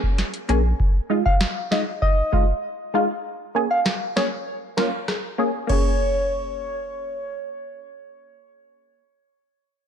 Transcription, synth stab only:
0.49 A#3 C#4 G#4
1.10 G#3 D#4 F4
1.71 G#3 D#4 F4
2.32 G#3 D#4 F4
2.94 G#3 D#4 F4
3.55 A#3 C#4 G#4
4.16 A#3 C#4 G#4
4.77 A#3 C#4 F4
5.38 A#3 C#4 G#4
5.67 A#3 C#4
5.72 G#4

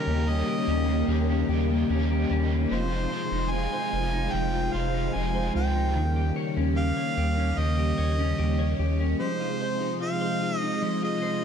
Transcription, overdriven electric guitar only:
Already playing: A#3 C#4 G4
0.27 D#3 A#3 C#4 G4
0.68 A#3 C#4 G4
1.08 D#3 A#3 C#4 G4
1.49 A#3 C#4 G4
1.90 D#3 A#3 C#4 G4
2.30 A#3 C#4 G4
2.71 F2 C3 D#3 G#3 C4 F4
3.11 D#3 G#3 C4 F4
3.53 F2 C3 D#3 G#3 C4 F4
3.92 D#3 G#3 C4 F4
4.33 D#3 G#3 C4 F4
4.74 D#3 G#3 C4 F4
5.14 F2 C3 D#3 G#3 C4 F4
5.55 D#3 G#3 C4 F4

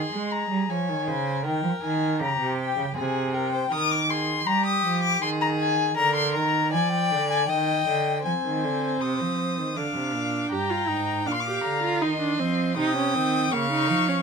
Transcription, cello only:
0.12 G#3
0.50 G3
0.69 F3
0.89 D#3
1.07 C#3
1.45 D#3
1.63 F3
1.82 D#3
2.20 C#3
2.39 C3
2.77 C#3
2.96 C3
3.71 D#3
4.46 G3
4.84 F3
5.22 D#3
5.98 D3
6.35 D#3
6.73 F3
7.11 D3
7.49 D#3
7.87 D3
8.25 F3
8.44 D#3
8.63 D3
9.01 C3
9.20 F3
9.57 D#3
9.76 D3
9.95 C3
10.14 A#2
10.52 G2
10.89 G#2
11.27 A#2
11.64 D3
12.01 D#3
12.39 F3
12.77 C3
13.14 D#3
13.52 C#3
13.90 F3

